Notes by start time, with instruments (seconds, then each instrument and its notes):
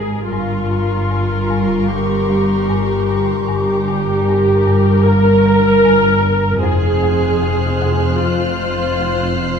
Already playing: double bass section G#1, marimba G#2, cello section G#2, viola section G#4, violin section A#4
0.29 double bass section G1, cello section G2, marimba G2, viola section F4, violin section A#4 A#5 C6 C#6
0.71 marimba G2
1.11 marimba G2
1.50 marimba G2
1.89 marimba G3, viola section G4
2.30 marimba G3
2.69 marimba G2
3.09 marimba G2
3.46 double bass section G1, cello section G2, marimba G2, viola section G4, violin section A#4
3.53 violin section D6
3.88 marimba G2
4.13 violin section C#6
4.28 marimba G2
4.67 marimba G2
5.04 marimba G3, viola section A#4
5.46 marimba G3
5.85 marimba G2
6.25 marimba G2
6.62 double bass section F1, cello section F2, marimba F2, viola section G#4, violin section C5 F6 F#6
7.03 marimba F2
7.42 marimba F2
7.81 marimba F2
8.19 marimba F3, viola section F4, violin section C7
8.61 marimba F3
9.01 marimba F2
9.39 marimba F2